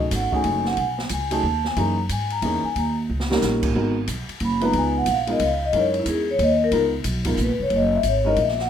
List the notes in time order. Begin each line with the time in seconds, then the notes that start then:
Already playing: B1 F#3 A3 C#4 D#4 G#4
0.11 G#1 F#5, kick, snare, hi-hat pedal, ride
0.32 F#3 A3 C#4 D#4 G#4 G#5, muted upright bass stroke, kick
0.44 F#1, kick, ride
0.65 F#5, snare
0.77 B1 G#5, kick, ride
0.98 snare
1.09 C#2 G#5, kick, hi-hat pedal, ride
1.31 F#3 A3 C#4 D#4 G#4 A5, ride
1.43 D#2, kick
1.65 G#5, snare
1.76 F#2 E3 A#3 C#4 D#4 G#4 A#5, kick, ride
2.09 G#2 G#5, kick, hi-hat pedal, ride
2.30 A#5, ride
2.42 E2 E3 A#3 C#4 D#4 G#4, kick, ride
2.64 G#5, muted upright bass stroke
2.76 D#2 A#5, kick, ride
3.10 C#2
3.20 snare
3.30 G3 A#3 C#4 D#4 A#4, snare
3.42 A#1, snare, hi-hat pedal
3.63 kick, crash
3.75 G#1 G#3 B3 D#4 F#4 A#4
4.07 B1, kick, hi-hat pedal, ride
4.29 muted upright bass stroke, ride
4.40 F#1, kick, ride
4.45 B5
4.61 G#3 B3 D#4 F4 B4, ride
4.65 A#5
4.73 C#2, kick, ride
4.78 G#5
4.98 F#5
5.06 A#1, kick, hi-hat pedal, ride
5.11 F5
5.27 G#3 B3 D#4 F4 A#4, ride
5.31 D#5
5.40 C#2, kick, ride
5.44 F5
5.65 D#5
5.72 F#2 G#3 C#4 D#4 E4 A#4, kick, ride
5.78 C#5
5.94 ride
6.00 E4
6.06 E2 G#4, kick, hi-hat pedal, ride
6.31 C#5
6.39 D#2, kick, ride
6.43 D#5
6.64 A#4
6.71 C#2 G#3 B3 D#4 F4 A#4, kick, ride
7.04 B1, kick, hi-hat pedal, ride
7.25 G#3 B3 D#4 F4 A#4, kick, ride
7.37 A#1, kick, hi-hat pedal
7.42 B4
7.49 G#1
7.60 F1 C#5
7.70 F#1, kick, ride
7.76 D#5
7.95 E5
8.03 G#1, kick, hi-hat pedal, ride
8.08 C#5
8.25 G#3 C#4 D#4 E4 A#4 D#5
8.36 A#1, kick, ride
8.42 E5
8.48 snare
8.59 F#5, snare